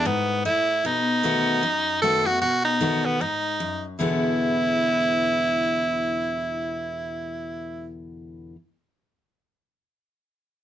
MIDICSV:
0, 0, Header, 1, 3, 480
1, 0, Start_track
1, 0, Tempo, 393185
1, 1030, Time_signature, 4, 2, 24, 8
1, 12986, End_track
2, 0, Start_track
2, 0, Title_t, "Tenor saxophone"
2, 0, Program_c, 0, 66
2, 78, Note_on_c, 0, 59, 92
2, 551, Note_off_c, 0, 59, 0
2, 558, Note_on_c, 0, 64, 100
2, 1047, Note_on_c, 0, 63, 100
2, 1065, Note_off_c, 0, 64, 0
2, 2456, Note_off_c, 0, 63, 0
2, 2463, Note_on_c, 0, 69, 109
2, 2761, Note_on_c, 0, 66, 98
2, 2779, Note_off_c, 0, 69, 0
2, 2941, Note_off_c, 0, 66, 0
2, 2949, Note_on_c, 0, 66, 100
2, 3217, Note_off_c, 0, 66, 0
2, 3233, Note_on_c, 0, 63, 101
2, 3723, Note_on_c, 0, 59, 91
2, 3742, Note_off_c, 0, 63, 0
2, 3917, Note_on_c, 0, 63, 81
2, 3935, Note_off_c, 0, 59, 0
2, 4682, Note_off_c, 0, 63, 0
2, 4872, Note_on_c, 0, 64, 97
2, 9641, Note_off_c, 0, 64, 0
2, 12986, End_track
3, 0, Start_track
3, 0, Title_t, "Steel-string acoustic guitar"
3, 0, Program_c, 1, 25
3, 66, Note_on_c, 1, 44, 94
3, 529, Note_off_c, 1, 44, 0
3, 553, Note_on_c, 1, 45, 86
3, 1012, Note_off_c, 1, 45, 0
3, 1035, Note_on_c, 1, 47, 94
3, 1507, Note_on_c, 1, 51, 87
3, 1512, Note_on_c, 1, 57, 90
3, 1517, Note_on_c, 1, 59, 94
3, 1521, Note_on_c, 1, 66, 91
3, 1954, Note_off_c, 1, 47, 0
3, 1970, Note_off_c, 1, 51, 0
3, 1972, Note_off_c, 1, 57, 0
3, 1975, Note_off_c, 1, 59, 0
3, 1977, Note_off_c, 1, 66, 0
3, 1988, Note_on_c, 1, 42, 95
3, 2469, Note_on_c, 1, 51, 84
3, 2480, Note_on_c, 1, 57, 93
3, 2485, Note_on_c, 1, 59, 91
3, 2492, Note_on_c, 1, 66, 103
3, 2745, Note_off_c, 1, 51, 0
3, 2749, Note_off_c, 1, 66, 0
3, 2751, Note_off_c, 1, 57, 0
3, 2754, Note_off_c, 1, 59, 0
3, 2763, Note_on_c, 1, 66, 67
3, 2782, Note_on_c, 1, 59, 48
3, 2911, Note_off_c, 1, 42, 0
3, 2946, Note_off_c, 1, 66, 0
3, 2948, Note_on_c, 1, 47, 89
3, 2956, Note_off_c, 1, 59, 0
3, 3425, Note_on_c, 1, 51, 86
3, 3431, Note_on_c, 1, 57, 91
3, 3437, Note_on_c, 1, 59, 97
3, 3442, Note_on_c, 1, 66, 93
3, 3872, Note_off_c, 1, 47, 0
3, 3889, Note_off_c, 1, 51, 0
3, 3892, Note_off_c, 1, 57, 0
3, 3895, Note_off_c, 1, 59, 0
3, 3898, Note_off_c, 1, 66, 0
3, 3920, Note_on_c, 1, 44, 89
3, 4377, Note_off_c, 1, 44, 0
3, 4395, Note_on_c, 1, 42, 84
3, 4855, Note_off_c, 1, 42, 0
3, 4867, Note_on_c, 1, 40, 80
3, 4876, Note_on_c, 1, 47, 83
3, 4882, Note_on_c, 1, 50, 86
3, 4885, Note_on_c, 1, 56, 91
3, 4891, Note_on_c, 1, 59, 96
3, 4896, Note_on_c, 1, 64, 93
3, 10426, Note_off_c, 1, 40, 0
3, 10436, Note_off_c, 1, 47, 0
3, 10441, Note_off_c, 1, 50, 0
3, 10445, Note_off_c, 1, 56, 0
3, 10451, Note_off_c, 1, 59, 0
3, 10456, Note_off_c, 1, 64, 0
3, 12986, End_track
0, 0, End_of_file